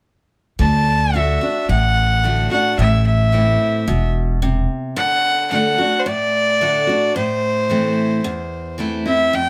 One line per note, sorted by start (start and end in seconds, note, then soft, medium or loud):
0.59 1.37 D2 medium
0.59 1.12 D3 medium
0.59 1.17 A5 medium
1.14 1.40 D3 soft
1.14 1.41 A3 soft
1.14 1.41 D4 medium
1.14 1.40 F#4 medium
1.14 1.70 E5 medium
1.41 1.68 D4 soft
1.41 1.68 F#4 soft
1.69 2.46 A1 medium
1.69 2.73 A2 medium
1.69 2.48 F#5 medium
2.23 2.50 D3 soft
2.23 2.50 A3 medium
2.23 2.50 D4 medium
2.23 2.50 F#4 medium
2.51 2.78 D4 soft
2.51 2.77 F#4 soft
2.51 2.77 F#5 medium
2.78 3.55 A1 medium
2.78 3.82 A2 medium
2.78 3.04 E5 medium
3.07 4.11 E5 medium
3.32 3.84 E3 medium
3.32 3.85 A3 soft
3.32 3.85 C4 medium
3.32 3.85 E4 medium
3.88 4.65 E1 medium
3.88 4.39 B2 medium
4.42 4.94 C3 medium
4.96 5.50 D3 medium
4.96 5.48 F#5 medium
5.51 5.77 D3 medium
5.51 5.78 A3 soft
5.51 5.78 D4 soft
5.51 5.77 F#4 medium
5.51 6.01 F#5 medium
5.78 6.06 D4 soft
5.78 6.05 F#4 medium
5.99 6.08 C5 medium
6.06 7.10 A2 medium
6.06 7.16 D5 medium
6.61 6.87 D3 medium
6.61 6.87 A3 medium
6.61 6.88 D4 medium
6.61 6.86 F#4 medium
6.87 7.15 D4 soft
6.87 7.14 F#4 soft
7.16 8.19 A2 medium
7.16 8.76 C5 medium
7.69 8.22 E3 medium
7.69 8.22 A3 medium
7.69 8.22 C4 medium
7.69 8.22 E4 medium
8.24 9.28 E2 medium
8.78 9.05 E3 medium
8.78 9.05 A3 medium
8.78 9.05 C4 medium
8.78 9.04 E4 medium
9.06 9.33 C4 soft
9.06 9.32 E4 soft
9.06 9.36 E5 medium
9.33 9.49 F2 medium
9.33 9.49 G5 medium